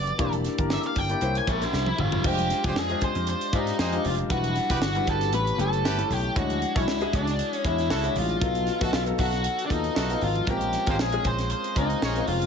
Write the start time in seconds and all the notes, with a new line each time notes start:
Already playing: F#1 B3 F#4 G4 A4 D5
0.07 closed hi-hat, high conga
0.18 E1 A#3 D4 E4 G4 D5, kick, closed hi-hat
0.32 closed hi-hat, high conga
0.44 snare, closed hi-hat
0.58 G1 A#3 D4 E4 G4 A#4, kick, closed hi-hat, high conga
0.70 E5, snare
0.83 F5, closed hi-hat, muted conga
0.96 G1 G5, kick, open hi-hat, low conga
1.09 A#3 D4 E4 G4 D5, closed hi-hat
1.21 C2 A#3 C#4 E4 G4 C5, closed hi-hat, muted conga
1.35 G#5, closed hi-hat
1.47 A#1 E4 G5, kick, closed hi-hat
1.61 F5, snare, closed hi-hat
1.73 C2, snare
1.86 E5, high tom
1.98 G1 F4, mid tom, low conga
2.12 floor tom, high conga
2.24 F1 G#3 D4 F4 G4 C5, kick, crash
2.38 closed hi-hat, muted conga, high conga
2.50 snare, closed hi-hat
2.64 F1 G#3 C4 D4 F4 G4 G#4 C5 D5, kick, closed hi-hat, high conga
2.75 F2 G#4, snare
2.89 G#3 D4 F4 G4 C5, closed hi-hat, muted conga, high conga
3.01 C4 G#4 C5, kick, closed hi-hat, low conga
3.15 F2, closed hi-hat
3.27 C5, closed hi-hat
3.41 closed hi-hat
3.53 G#2 G#3 D#4 F4 G4 C5 D5, kick, closed hi-hat
3.67 snare, closed hi-hat
3.78 F2 C4 G#4 C5, snare
3.92 G#3 D4 F4 G4 C5, closed hi-hat
4.04 F1 F4, open hi-hat, low conga
4.18 closed hi-hat, high conga
4.29 E1 G3 D4 E4 F#4 B4, kick, closed hi-hat, muted conga
4.44 closed hi-hat, muted conga, high conga
4.56 snare, closed hi-hat
4.69 E1 G3 B3 D4 E4 F#4 G4 B4 D5, kick, closed hi-hat, high conga
4.81 G1, snare, muted conga
4.95 G3 D4 E4 F#4 B4, closed hi-hat, high conga
5.07 G1 B3 G4 A4 B4, kick, closed hi-hat, low conga
5.21 snare, closed hi-hat
5.33 A1 A3 C#4 E4 G4 B4, closed hi-hat
5.47 closed hi-hat, muted conga
5.58 F#1 A3 C#4 E4 G4 A4 B4, closed hi-hat
5.73 closed hi-hat
5.84 G1 E4 G4 B4, snare
5.97 A3 C#4 E4 G4 B4, closed hi-hat, muted conga
6.10 B1 G4, open hi-hat, low conga
6.24 closed hi-hat, high conga
6.36 D2 G#3 D4 E4 F#4 C#5, kick, closed hi-hat
6.50 closed hi-hat, muted conga, high conga
6.62 closed hi-hat
6.75 B1 G#3 C#4 D4 E4 F#4 A4 C#5, kick, closed hi-hat, high conga
6.87 C#2, snare
7.01 G#3 D4 E4 F#4 G#4, closed hi-hat, high conga
7.12 C#2 D4 E4 F#4 A4, kick, closed hi-hat, low conga
7.27 snare, closed hi-hat
7.39 closed hi-hat
7.52 C#4, closed hi-hat, muted conga
7.64 E2 G#3 D4 E4 F#4 C#5, kick, closed hi-hat
7.78 snare, closed hi-hat
7.89 C#2 E4 F#4 A4, snare, muted conga
8.04 G#3 D4 E4 F#4 C#5, closed hi-hat, muted conga
8.15 A1 F4, open hi-hat, low conga
8.29 closed hi-hat, high conga
8.41 B1 F#3 B3 D#4 F4 A4, kick, closed hi-hat, muted conga, low conga
8.55 closed hi-hat, muted conga, high conga
8.67 snare, closed hi-hat
8.80 A1 F#3 A3 B3 D#4 F4 F#4 A4, kick, closed hi-hat, high conga
8.93 B1 F4, snare, muted conga
9.06 F#3 B3 D#4 A4 F5, closed hi-hat, high conga
9.18 B1 A3 F#4 A4, kick, open hi-hat, low conga
9.33 snare, closed hi-hat
9.44 closed hi-hat
9.59 closed hi-hat
9.66 D#2 F#3 B3 D4 D#4
9.70 D#4 F4 A4, kick, closed hi-hat
9.84 closed hi-hat
9.95 B1 A3 F#4 A4, snare, muted conga
10.10 F#3 B3 D#4 F4 A4, snare, closed hi-hat, muted conga
10.21 G#1 F4, open hi-hat, low conga
10.35 closed hi-hat, high conga
10.47 A#1 G#3 C4 C#4 F4 G4 A#4, kick, closed hi-hat, muted conga
10.61 closed hi-hat, muted conga, high conga
10.73 snare, closed hi-hat
10.86 G#1 G#3 C4 C#4 F4 G4 G#4 A#4 C5, kick, closed hi-hat, high conga
10.99 A#1 G#4, snare, muted conga
11.12 G#3 C4 C#4 F4 G#4, closed hi-hat, high conga
11.24 A#1 F4 G#4 C5, kick, closed hi-hat, low conga
11.38 snare, closed hi-hat
11.50 C5, closed hi-hat
11.64 closed hi-hat
11.75 C#2 G#3 C4 C#4 D#4 F4 A#4, kick, closed hi-hat
11.90 closed hi-hat
12.02 A#1 F4 G#4 C#5, snare, muted conga
12.16 G#3 C4 C#4 F4 A#4, closed hi-hat
12.27 F1 F4, open hi-hat, low conga
12.41 closed hi-hat, high conga